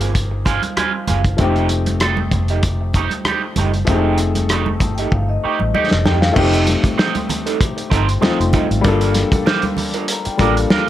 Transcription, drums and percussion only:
0.01 closed hi-hat
0.15 kick, closed hi-hat, muted conga
0.45 kick, closed hi-hat, muted conga
0.62 closed hi-hat, high conga
0.77 cross-stick, closed hi-hat, high conga
1.07 closed hi-hat, muted conga, high conga, low conga
1.25 kick, closed hi-hat
1.38 kick, closed hi-hat, muted conga, low conga
1.56 closed hi-hat
1.69 closed hi-hat, muted conga
1.86 closed hi-hat, high conga
2.00 cross-stick, closed hi-hat, muted conga
2.17 high conga
2.31 kick, closed hi-hat, muted conga, low conga
2.48 closed hi-hat
2.63 kick, closed hi-hat, muted conga
2.94 kick, closed hi-hat, muted conga
3.10 closed hi-hat, high conga
3.25 cross-stick, closed hi-hat, muted conga, high conga
3.56 closed hi-hat, muted conga, high conga, low conga
3.74 closed hi-hat
3.87 kick, closed hi-hat, muted conga, low conga
4.18 cross-stick, closed hi-hat, muted conga
4.35 closed hi-hat, high conga
4.49 cross-stick, closed hi-hat, muted conga
4.66 high conga
4.80 kick, closed hi-hat, low conga
4.98 closed hi-hat
5.12 kick
5.60 high conga
5.75 muted conga, high conga
5.91 snare
6.06 snare, muted conga, high conga, low conga
6.22 snare
6.36 kick, crash, muted conga, low conga
6.54 closed hi-hat
6.67 snare, closed hi-hat, muted conga
6.84 kick, closed hi-hat, high conga
6.99 snare, muted conga
7.15 closed hi-hat, high conga
7.29 closed hi-hat, low conga
7.47 closed hi-hat
7.61 kick, closed hi-hat, muted conga
7.78 closed hi-hat
7.92 kick, closed hi-hat, muted conga
8.09 closed hi-hat
8.22 snare, muted conga, high conga
8.41 closed hi-hat
8.53 kick, closed hi-hat, high conga, low conga
8.71 closed hi-hat
8.84 kick, closed hi-hat, muted conga, low conga
9.01 closed hi-hat
9.14 snare, closed hi-hat, muted conga
9.32 kick, closed hi-hat, high conga
9.46 snare, muted conga
9.62 closed hi-hat, high conga
9.77 open hi-hat, low conga
9.94 closed hi-hat
10.08 closed hi-hat
10.25 closed hi-hat
10.39 kick, closed hi-hat, muted conga
10.57 closed hi-hat
10.70 snare, muted conga, high conga

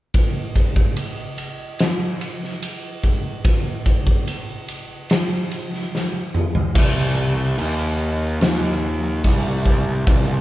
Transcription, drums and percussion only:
0.14 kick, ride
0.56 kick, ride
0.76 kick
0.97 ride
1.38 ride
1.79 snare, ride
2.21 ride
2.43 snare
2.63 ride
3.03 kick, ride
3.45 kick, ride
3.86 kick, ride
4.07 kick
4.27 ride
4.68 ride
5.10 snare, ride
5.51 ride
5.74 snare
5.95 snare
6.34 mid tom
6.55 floor tom
6.75 kick, crash
7.58 crash
8.41 snare, crash
9.24 kick, crash
9.66 kick
10.07 kick, crash

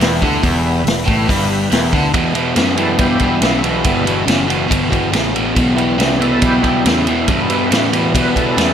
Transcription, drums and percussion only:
0.01 snare, open hi-hat
0.22 kick
0.43 kick, open hi-hat
0.87 snare, open hi-hat
1.08 kick
1.29 kick, open hi-hat
1.72 snare, open hi-hat
1.93 kick
2.14 kick, ride
2.35 ride
2.56 snare, ride
2.77 ride
2.99 kick, ride
3.19 kick, ride
3.42 snare, ride
3.64 ride
3.84 kick, ride
4.07 ride
4.28 snare, ride
4.50 ride
4.71 kick, ride
4.92 kick, ride
5.13 snare, ride
5.36 ride
5.56 kick, ride
5.78 ride
6.00 snare, ride
6.22 ride
6.42 kick, ride
6.64 kick, ride
6.86 snare, ride
7.07 ride
7.28 kick, ride
7.50 ride
7.72 snare, ride
7.93 ride
8.15 kick, ride
8.36 kick, ride
8.58 snare, ride

